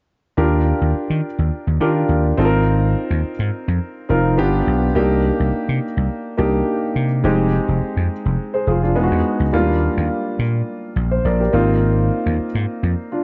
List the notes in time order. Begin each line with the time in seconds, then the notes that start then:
0.37 D#2 D4 F4 G4 A#4
0.81 D#2
0.94 muted slap bass stroke
1.10 D#3
1.39 D#2
1.67 D#2
1.80 D#3 D4 F4 G4 A#4
2.09 D#2
2.37 G#1 C4 D#4 F4 A4
2.45 A#4
3.10 D#2
3.24 muted slap bass stroke
3.39 G#2
3.68 F2
4.09 F1 C4 D#4 F4 A#4
4.38 G1 B3 D4 F4 G4
4.67 B1
4.95 C2 A#3 D4 D#4 G4
5.40 C2
5.53 muted slap bass stroke
5.69 C3
5.97 C2
6.37 C2 A#3 D4 D#4 G4
6.96 C3
7.24 F1 G#3 C4 D#4 G4
7.68 F1
7.81 muted slap bass stroke
7.97 F2
8.25 F1
8.54 G#4 C5
8.67 F1 F4 G#4
8.83 D4 F4
8.95 E1 G#3 B3 D#4 F4
9.03 F#4
9.11 E2
9.40 C#2
9.53 D#2 G3 A#3 D4 F4
9.97 D#2
10.39 A#2
10.96 A#1
11.11 C5
11.25 A#1 A#4 D5
11.40 G4 A#4
11.53 G#1 A#3 C4 D#4 F4
12.26 D#2
12.39 muted slap bass stroke
12.55 G#2
12.83 F2
13.12 D4 F4